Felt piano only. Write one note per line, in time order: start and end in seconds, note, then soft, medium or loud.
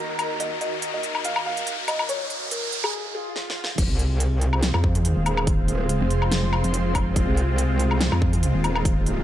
0.00 0.32 A#5 medium
0.40 0.59 D#5 loud
0.61 0.89 D#5 medium
0.94 1.21 D#5 medium
1.25 1.43 F5 medium
1.46 1.83 F5 medium
1.88 2.06 D#5 medium
2.09 2.46 C#5 loud
2.51 2.79 A#4 medium
2.84 3.11 G#4 loud
3.15 3.70 G#4 medium